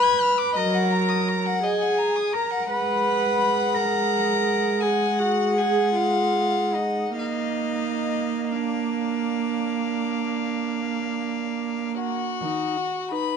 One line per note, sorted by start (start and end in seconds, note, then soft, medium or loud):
0.00 0.59 B4 medium
0.00 0.58 B5 loud
0.00 0.23 G#6 medium
0.21 0.40 F6 medium
0.38 0.55 D6 medium
0.55 1.46 F#3 medium
0.55 1.63 A#4 medium
0.55 0.75 D#5 medium
0.55 1.65 A#5 medium
0.74 0.92 F#5 medium
0.91 1.10 A#5 medium
1.09 1.30 D#6 medium
1.28 1.47 A#5 medium
1.46 1.65 F#5 medium
1.63 2.35 G#4 medium
1.63 1.82 D#5 medium
1.63 2.34 G#5 medium
1.81 1.99 F#5 medium
1.98 2.17 A#5 medium
2.16 2.34 D#6 medium
2.33 2.69 A#4 medium
2.33 2.52 A#5 medium
2.33 2.70 A#5 medium
2.51 2.69 F#5 medium
2.69 7.14 G#3 medium
2.69 3.76 B4 medium
2.69 4.79 F#5 medium
2.69 3.77 B5 medium
3.74 4.84 A#4 medium
3.74 4.82 A#5 medium
4.81 5.21 G#4 medium
4.81 7.15 F#5 medium
4.81 5.21 G#5 medium
5.19 5.57 F#4 medium
5.19 5.59 F#5 medium
5.57 5.94 G#4 medium
5.57 5.97 G#5 medium
5.95 6.76 F4 medium
5.95 6.77 F5 medium
6.74 7.17 D#4 medium
6.74 7.19 D#5 soft
7.17 12.14 A#3 medium
7.17 8.54 D#4 medium
7.17 8.53 D#5 medium
7.17 8.49 F5 medium
8.51 12.01 D4 medium
8.51 11.99 D5 medium
8.51 11.96 F5 medium
12.00 13.13 F#4 medium
12.00 13.08 F#5 medium
12.41 13.32 D#3 medium
12.41 12.78 D#4 soft
12.77 13.13 F#4 soft
13.11 13.37 D#4 soft
13.11 13.37 B4 medium
13.11 13.37 B5 medium